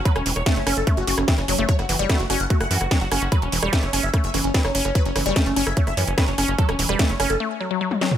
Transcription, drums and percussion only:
0.05 kick loud
0.05 closed hi-hat medium
0.16 cross-stick medium
0.16 closed hi-hat soft
0.26 open hi-hat loud
0.36 cross-stick soft
0.36 closed hi-hat soft
0.46 kick loud
0.46 snare loud
0.46 closed hi-hat medium
0.56 closed hi-hat soft
0.67 cross-stick medium
0.67 open hi-hat loud
0.87 kick loud
0.87 cross-stick soft
0.87 closed hi-hat medium
0.97 closed hi-hat soft
1.07 open hi-hat loud
1.18 cross-stick medium
1.18 closed hi-hat soft
1.28 kick loud
1.28 snare loud
1.28 closed hi-hat medium
1.38 cross-stick soft
1.38 closed hi-hat soft
1.48 open hi-hat loud
1.69 kick loud
1.69 closed hi-hat medium
1.79 cross-stick soft
1.79 closed hi-hat soft
1.89 open hi-hat loud
1.99 closed hi-hat soft
2.10 kick loud
2.10 cross-stick medium
2.10 snare loud
2.10 closed hi-hat medium
2.20 closed hi-hat soft
2.30 cross-stick soft
2.30 open hi-hat loud
2.40 closed hi-hat soft
2.50 kick loud
2.50 closed hi-hat medium
2.61 cross-stick medium
2.61 closed hi-hat soft
2.71 open hi-hat loud
2.81 cross-stick soft
2.81 closed hi-hat soft
2.91 kick loud
2.91 snare loud
2.91 closed hi-hat medium
3.01 closed hi-hat soft
3.12 cross-stick medium
3.12 open hi-hat loud
3.22 closed hi-hat soft
3.32 kick loud
3.32 cross-stick soft
3.32 closed hi-hat medium
3.42 closed hi-hat soft
3.52 open hi-hat loud
3.63 cross-stick medium
3.73 kick loud
3.73 snare loud
3.73 closed hi-hat medium
3.83 cross-stick soft
3.83 closed hi-hat soft
3.93 open hi-hat loud
4.03 closed hi-hat soft
4.14 kick loud
4.14 cross-stick medium
4.14 closed hi-hat medium
4.24 closed hi-hat soft
4.34 cross-stick soft
4.34 open hi-hat loud
4.44 closed hi-hat soft
4.54 kick loud
4.54 snare loud
4.54 closed hi-hat medium
4.65 cross-stick medium
4.65 closed hi-hat soft
4.75 open hi-hat loud
4.85 cross-stick soft
4.85 closed hi-hat soft
4.95 kick loud
4.95 closed hi-hat medium
5.05 closed hi-hat soft
5.16 cross-stick medium
5.16 open hi-hat loud
5.26 closed hi-hat soft
5.36 kick loud
5.36 cross-stick soft
5.36 snare loud
5.36 closed hi-hat loud
5.46 closed hi-hat soft
5.56 open hi-hat loud
5.67 cross-stick medium
5.67 closed hi-hat soft
5.77 kick loud
5.77 closed hi-hat medium
5.87 cross-stick soft
5.87 closed hi-hat soft
5.97 open hi-hat loud
6.07 closed hi-hat soft
6.18 kick loud
6.18 cross-stick medium
6.18 snare loud
6.18 closed hi-hat loud
6.28 closed hi-hat soft
6.38 cross-stick soft
6.38 open hi-hat loud
6.59 kick loud
6.59 closed hi-hat medium
6.69 cross-stick medium
6.69 closed hi-hat soft
6.79 open hi-hat loud
6.89 cross-stick soft
6.89 closed hi-hat soft
6.99 kick loud
6.99 snare loud
6.99 closed hi-hat loud
7.10 closed hi-hat soft
7.20 cross-stick medium
7.20 open hi-hat loud
7.30 closed hi-hat soft
7.91 high tom medium
8.01 snare medium
8.12 mid tom medium

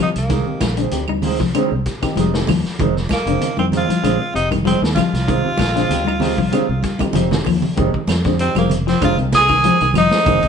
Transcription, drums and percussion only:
0.00 claves medium
0.16 closed hi-hat medium
0.29 kick medium
0.29 snare soft
0.29 closed hi-hat medium
0.29 high conga soft
0.29 low conga medium
0.61 kick medium
0.61 snare medium
0.61 closed hi-hat medium
0.61 high conga medium
0.61 claves medium
0.77 closed hi-hat medium
0.91 closed hi-hat medium
0.91 high conga soft
1.08 high conga medium
1.08 claves medium
1.22 open hi-hat medium
1.22 low conga medium
1.39 kick medium
1.39 snare soft
1.53 closed hi-hat medium
1.53 high conga soft
1.53 claves medium
1.86 kick medium
1.86 snare soft
1.86 closed hi-hat medium
2.02 kick medium
2.02 snare soft
2.02 closed hi-hat soft
2.02 claves medium
2.16 closed hi-hat medium
2.16 high conga medium
2.34 snare medium
2.47 kick medium
2.47 snare soft
2.47 open hi-hat medium
2.47 high conga medium
2.47 low conga medium
2.47 claves medium
2.65 snare soft
2.79 kick medium
2.79 closed hi-hat medium
2.79 high conga soft
2.79 low conga medium
2.96 snare soft
3.09 kick medium
3.09 snare medium
3.09 closed hi-hat soft
3.09 high conga medium
3.09 claves medium
3.27 closed hi-hat medium
3.41 closed hi-hat medium
3.41 high conga soft
3.41 low conga medium
3.57 high conga medium
3.57 claves medium
3.72 closed hi-hat soft
3.72 low conga medium
3.88 closed hi-hat soft
3.88 high conga medium
4.04 closed hi-hat medium
4.04 claves medium
4.36 closed hi-hat soft
4.51 kick medium
4.51 closed hi-hat soft
4.51 high conga medium
4.51 claves medium
4.65 closed hi-hat medium
4.65 high conga medium
4.84 snare medium
4.96 kick medium
4.96 snare soft
4.96 closed hi-hat soft
4.96 high conga loud
4.96 low conga medium
4.96 claves medium
5.14 snare soft
5.14 closed hi-hat medium
5.27 kick medium
5.27 closed hi-hat medium
5.27 high conga soft
5.57 kick medium
5.57 snare medium
5.57 closed hi-hat medium
5.57 high conga medium
5.57 claves medium
5.77 snare soft
5.77 closed hi-hat medium
5.89 closed hi-hat medium
5.89 high conga soft
5.89 low conga medium
6.05 high conga medium
6.05 claves medium
6.20 snare soft
6.20 open hi-hat medium
6.20 low conga medium
6.37 kick medium
6.37 high conga medium
6.52 closed hi-hat medium
6.52 high conga soft
6.52 claves medium
6.83 kick medium
6.83 snare soft
6.83 closed hi-hat medium
6.83 high conga medium
6.99 kick medium
6.99 closed hi-hat medium
6.99 high conga medium
6.99 claves medium
7.13 closed hi-hat medium
7.13 low conga medium
7.31 snare medium
7.31 low conga medium
7.45 kick medium
7.45 open hi-hat medium
7.45 low conga medium
7.45 claves medium
7.62 low conga medium
7.77 kick medium
7.77 closed hi-hat medium
7.77 high conga soft
7.94 kick medium
8.07 snare medium
8.07 closed hi-hat medium
8.07 high conga medium
8.07 claves medium
8.24 kick medium
8.24 snare soft
8.24 closed hi-hat soft
8.39 closed hi-hat medium
8.39 high conga soft
8.55 closed hi-hat soft
8.55 high conga medium
8.55 claves medium
8.70 closed hi-hat medium
8.70 low conga medium
8.88 snare soft
8.88 closed hi-hat soft
9.01 kick medium
9.01 closed hi-hat medium
9.01 high conga soft
9.01 claves medium
9.18 closed hi-hat soft
9.32 kick medium
9.32 snare medium
9.32 closed hi-hat medium
9.32 high conga medium
9.49 kick medium
9.49 snare soft
9.49 claves medium
9.64 closed hi-hat medium
9.81 closed hi-hat soft
9.94 closed hi-hat medium
9.94 high conga medium
9.94 low conga medium
9.94 claves medium
10.11 snare medium
10.25 kick loud
10.25 closed hi-hat medium
10.25 high conga soft
10.43 kick medium
10.43 closed hi-hat soft

